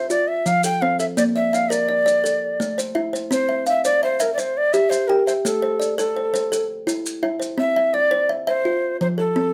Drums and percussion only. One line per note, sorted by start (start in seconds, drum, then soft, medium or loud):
0.10 maracas medium
0.46 maracas medium
0.64 maracas medium
1.00 maracas medium
1.18 maracas medium
1.54 maracas medium
1.72 maracas medium
2.08 maracas medium
2.26 maracas medium
2.61 maracas medium
2.79 maracas medium
3.15 maracas medium
3.32 maracas medium
3.66 maracas soft
3.85 maracas medium
4.20 maracas medium
4.39 maracas medium
4.74 maracas medium
4.92 maracas medium
5.28 maracas medium
5.46 maracas medium
5.81 maracas medium
5.99 maracas medium
6.35 maracas medium
6.53 maracas medium
6.88 maracas medium
7.06 maracas medium
7.42 maracas medium